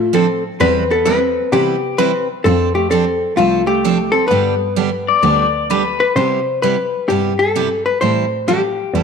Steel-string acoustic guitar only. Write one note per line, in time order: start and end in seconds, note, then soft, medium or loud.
0.13 0.25 D3 medium
0.13 0.25 F3 medium
0.13 0.25 C4 medium
0.13 0.25 D4 medium
0.13 0.26 A4 medium
0.60 0.83 E3 medium
0.60 0.82 G3 medium
0.60 0.83 C4 medium
0.60 0.83 E4 medium
0.60 0.83 B4 medium
1.05 1.18 E3 medium
1.05 1.18 G3 medium
1.05 1.18 C4 medium
1.05 1.18 E4 medium
1.05 1.18 B4 medium
1.52 1.75 E3 medium
1.52 1.75 G3 medium
1.52 1.75 C4 medium
1.52 1.76 E4 medium
1.52 1.75 B4 medium
1.98 2.11 E3 medium
1.98 2.11 G3 medium
1.98 2.11 C4 medium
1.98 2.11 E4 medium
1.98 2.11 B4 medium
2.46 2.68 F3 medium
2.46 2.68 C4 medium
2.46 2.68 D4 medium
2.46 2.68 A4 medium
2.91 3.03 F3 medium
2.91 3.04 C4 medium
2.91 3.04 D4 medium
2.91 3.04 A4 medium
3.38 3.60 F3 medium
3.38 3.60 C4 medium
3.38 3.61 D4 medium
3.38 3.61 A4 medium
3.84 3.96 F3 medium
3.84 3.97 C4 medium
3.84 3.97 D4 medium
3.84 3.97 A4 medium
4.31 4.53 D3 medium
4.31 4.54 G3 medium
4.31 4.53 B3 medium
4.31 4.54 D4 medium
4.31 4.54 G4 medium
4.76 4.89 D3 medium
4.76 4.89 G3 medium
4.76 4.89 B3 medium
4.76 4.89 D4 medium
4.76 4.89 G4 medium
5.22 5.46 D3 medium
5.22 5.46 G3 medium
5.22 5.46 B3 medium
5.22 5.46 D4 medium
5.22 5.46 G4 medium
5.70 5.82 D3 medium
5.70 5.82 G3 medium
5.70 5.82 B3 medium
5.70 5.82 D4 medium
5.70 5.82 G4 medium
6.16 6.39 C3 medium
6.16 6.39 G3 medium
6.16 6.39 B3 medium
6.16 6.39 E4 medium
6.16 6.39 G4 medium
6.63 6.75 C3 medium
6.63 6.75 G3 medium
6.63 6.75 B3 medium
6.63 6.75 E4 medium
6.63 6.75 G4 medium
7.10 7.32 C3 medium
7.10 7.32 G3 medium
7.10 7.32 B3 medium
7.10 7.32 E4 medium
7.10 7.32 G4 medium
7.55 7.67 C3 medium
7.55 7.68 G3 medium
7.55 7.68 B3 medium
7.55 7.68 E4 medium
7.55 7.68 G4 medium
8.01 8.24 E3 medium
8.01 8.24 G3 medium
8.01 8.24 C4 medium
8.01 8.24 E4 medium
8.01 8.24 A4 medium
8.48 8.60 E3 medium
8.48 8.60 G3 medium
8.48 8.60 C4 medium
8.48 8.60 E4 medium
8.48 8.60 A4 medium
8.95 9.03 E3 medium
8.95 9.03 G3 medium
8.95 9.03 C4 medium
8.95 9.03 E4 medium
8.95 9.03 A4 medium